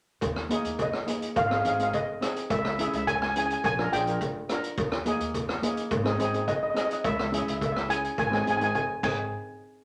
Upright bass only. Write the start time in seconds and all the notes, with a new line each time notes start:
0.22 D#2
0.65 D#2
1.36 G#1
1.65 G#1
2.50 C#2
2.93 C#2
3.64 A#1
3.93 A#1
4.78 D#2
5.20 D#2
5.91 G#1
6.20 G#1
7.05 C#2
7.47 C#2
8.18 G#1
8.47 G#1
9.03 G#1